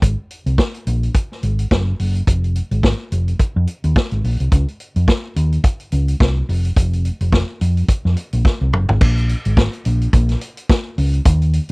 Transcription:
0.02 G#1, kick, closed hi-hat
0.31 closed hi-hat
0.46 C2, closed hi-hat
0.58 kick, snare
0.74 closed hi-hat
0.87 A#1, closed hi-hat
1.03 closed hi-hat
1.14 kick, closed hi-hat
1.32 snare
1.43 G#1, closed hi-hat
1.59 closed hi-hat
1.71 F#1, kick, snare
2.00 F#1, open hi-hat
2.15 closed hi-hat
2.27 F1, kick, closed hi-hat
2.44 closed hi-hat
2.55 closed hi-hat
2.71 G#1, closed hi-hat
2.83 kick, snare
3.12 F1, closed hi-hat
3.28 closed hi-hat
3.39 muted fingered electric bass stroke, kick, closed hi-hat
3.56 F2
3.67 closed hi-hat
3.84 D#2, closed hi-hat
3.96 kick, snare
4.11 G#1, closed hi-hat
4.24 A#1, open hi-hat
4.40 C2, closed hi-hat
4.52 C#2, kick, closed hi-hat
4.68 closed hi-hat
4.80 closed hi-hat
4.96 F2, closed hi-hat
5.08 kick, snare
5.36 D#2, closed hi-hat
5.52 closed hi-hat
5.64 kick, closed hi-hat
5.80 closed hi-hat
5.92 C#2, closed hi-hat
6.08 closed hi-hat
6.20 C2, kick, snare
6.49 F1, open hi-hat
6.65 closed hi-hat
6.76 F1, kick, closed hi-hat
6.93 closed hi-hat
7.05 closed hi-hat
7.21 F1, closed hi-hat
7.32 kick, snare
7.61 F2, closed hi-hat
7.77 closed hi-hat
7.88 muted fingered electric bass stroke, kick, closed hi-hat
8.05 F2, snare
8.17 closed hi-hat
8.33 A#1, closed hi-hat
8.45 kick, snare
8.61 C2
8.73 F#1, mid tom
8.89 G#1, floor tom
9.01 A#1, kick, crash
9.17 closed hi-hat
9.29 closed hi-hat
9.45 G#1, closed hi-hat
9.57 kick, snare
9.73 closed hi-hat
9.85 A#1, closed hi-hat
10.02 closed hi-hat
10.13 A#1, kick, closed hi-hat
10.29 snare, closed hi-hat
10.41 closed hi-hat
10.57 closed hi-hat
10.69 kick, snare
10.98 C#2, open hi-hat
11.14 closed hi-hat
11.25 D#2, kick, closed hi-hat
11.42 closed hi-hat
11.53 closed hi-hat

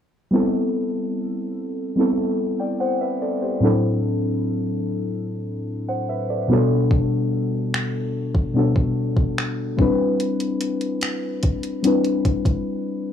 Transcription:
0.31 G3 B3 C4 E4
0.36 A4
1.96 G3 B3 C4 E4
2.00 A4
2.60 D5 G5
2.80 C5 F#5
3.01 B4 E5
3.22 A4 D5
3.42 G4 C5
3.60 A2 F#3 C4 D4 E4
3.65 A4
5.89 C5 F#5
6.09 B4 E5
6.30 A4 D5
6.48 B2 G3 B3 D4 F#4
6.53 A4
6.91 kick
7.74 finger snap
8.35 kick
8.54 B2 G3 B3 D4 F#4
8.58 A4
8.76 kick
9.17 kick
9.38 finger snap
9.77 G3 C4 D4 E4, kick
9.82 B4
10.20 closed hi-hat
10.40 closed hi-hat
10.61 closed hi-hat
10.81 closed hi-hat
11.01 finger snap, closed hi-hat
11.43 kick, closed hi-hat
11.63 closed hi-hat
11.83 G3 C4 D4 E4, closed hi-hat
11.87 B4
12.04 closed hi-hat
12.25 kick, closed hi-hat
12.45 kick, closed hi-hat

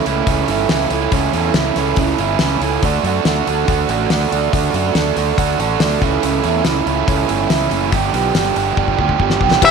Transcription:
0.05 C#2 C#3 E3 A3 C#4 E4, open hi-hat
0.27 C#2 C#3 E3 A3 C#4 E4, kick, open hi-hat
0.48 G1 C#3 E3 A3 C#4 E4, open hi-hat
0.69 C#2 C#3 E3 A3 C#4 E4, snare, open hi-hat
0.90 C#2 C#3 E3 A3 C#4 E4, open hi-hat
1.11 C#2 C#3 E3 A3 C#4 E4, kick, open hi-hat
1.33 E2 C#3 E3 A3 C#4 E4, open hi-hat
1.54 C#2 C#3 E3 A3 C#4 E4, snare, open hi-hat
1.76 C#2 C#3 E3 A3 C#4 E4, snare, open hi-hat
1.96 C#2 C#3 E3 A3 C#4 E4, kick, open hi-hat
2.18 G1 C#3 E3 A3 C#4 E4, open hi-hat
2.39 C#2 C#3 E3 A3 C#4 E4, snare, open hi-hat
2.60 C#2 C#3 E3 A3 C#4 E4, open hi-hat
2.82 D2 D3 A3 D4 F#4, kick, open hi-hat
3.03 F#2 D3 A3 D4 F#4, open hi-hat
3.25 D2 D3 A3 D4 F#4, snare, open hi-hat
3.47 D2 D3 A3 D4 F#4, open hi-hat
3.67 D2 D3 A3 D4 F#4, kick, open hi-hat
3.88 A1 D3 A3 D4 F#4, open hi-hat
4.10 D2 D3 A3 D4 F#4, snare, open hi-hat
4.31 D2 D3 A3 D4 F#4, open hi-hat
4.53 D2 D3 A3 D4 F#4, kick, open hi-hat
4.73 F#2 D3 A3 D4 F#4, open hi-hat
4.95 D2 D3 A3 D4 F#4, snare, open hi-hat
5.16 D2 D3 A3 D4 F#4, snare, open hi-hat
5.37 D2 D3 A3 D4 F#4, kick, open hi-hat
5.59 A1 D3 A3 D4 F#4, open hi-hat
5.80 D2 D3 A3 D4 F#4, snare, open hi-hat
6.01 C#2 C#3 E3 A3 C#4 E4, kick, open hi-hat
6.22 C#2 C#3 E3 A3 C#4 E4, open hi-hat
6.44 E2 C#3 E3 A3 C#4 E4, open hi-hat
6.65 C#2 C#3 E3 A3 C#4 E4, snare, open hi-hat
6.86 C#2 C#3 E3 A3 C#4 E4, open hi-hat
7.07 C#2 C#3 E3 A3 C#4 E4, kick, open hi-hat
7.28 G1 C#3 E3 A3 C#4 E4, open hi-hat
7.49 C#2 C#3 E3 A3 C#4 E4, snare, open hi-hat
7.69 F#1 C#3 E3 A3 C#4 E4, open hi-hat
7.91 G1 G2 D3 F3 G3 B3 G4, kick, open hi-hat
8.13 B1 G2 D3 F3 G3 B3 G4, open hi-hat
8.33 G1 G2 D3 F3 G3 B3 G4, snare, open hi-hat
8.55 G1 G2 D3 F3 G3 B3 G4, open hi-hat
8.77 G1 G2 D3 F3 G3 B3 G4, kick
8.88 kick
8.98 D2 G2 D3 F3 G3 B3 G4, kick
9.09 kick
9.19 G1 G2 D3 F3 G3 B3 G4, kick
9.30 snare
9.40 B1 G2 D3 F3 G3 B3 G4, kick
9.51 snare
9.61 C2 C3 E3 G3 E4 G4 C5 E5, kick, crash

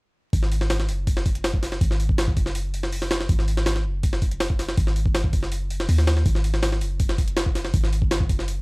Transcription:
0.33 G#1, kick, open hi-hat
0.43 snare
0.52 open hi-hat
0.61 snare
0.70 snare, open hi-hat
0.80 snare
0.88 F#1, open hi-hat
1.07 kick, open hi-hat
1.17 snare
1.26 kick, open hi-hat
1.35 closed hi-hat
1.44 snare, open hi-hat
1.54 kick
1.63 snare, open hi-hat
1.72 snare
1.81 G#1, kick, open hi-hat
1.91 snare
2.00 open hi-hat
2.09 kick
2.18 snare, open hi-hat
2.28 kick
2.37 F#1, kick, open hi-hat
2.46 snare
2.55 open hi-hat
2.74 open hi-hat
2.83 snare
2.92 open hi-hat
3.02 snare
3.11 snare, open hi-hat
3.20 snare
3.29 G#1, kick, open hi-hat
3.39 snare
3.48 open hi-hat
3.57 snare
3.66 snare, open hi-hat
3.76 snare
3.85 F#1
4.03 kick, open hi-hat
4.13 snare
4.22 kick, open hi-hat
4.31 closed hi-hat
4.40 snare, open hi-hat
4.50 kick
4.59 snare, open hi-hat
4.68 snare
4.77 G#1, kick, open hi-hat
4.87 snare
4.96 open hi-hat
5.06 kick
5.15 snare, open hi-hat
5.24 kick
5.33 F#1, kick, open hi-hat
5.43 snare
5.52 open hi-hat
5.70 open hi-hat
5.80 snare
5.89 D#2, open hi-hat
5.98 snare
6.07 snare, open hi-hat
6.17 snare
6.26 G#1, kick, open hi-hat
6.35 snare
6.44 open hi-hat
6.54 snare
6.63 snare, open hi-hat
6.72 snare
6.81 F#1, open hi-hat
7.00 kick, open hi-hat
7.09 snare
7.18 kick, open hi-hat
7.28 closed hi-hat
7.37 snare, open hi-hat
7.46 kick
7.55 snare, open hi-hat
7.65 snare
7.74 G#1, kick, open hi-hat
7.84 snare
7.93 open hi-hat
8.02 kick
8.11 snare, open hi-hat
8.20 kick
8.29 F#1, kick, open hi-hat
8.39 snare
8.48 open hi-hat

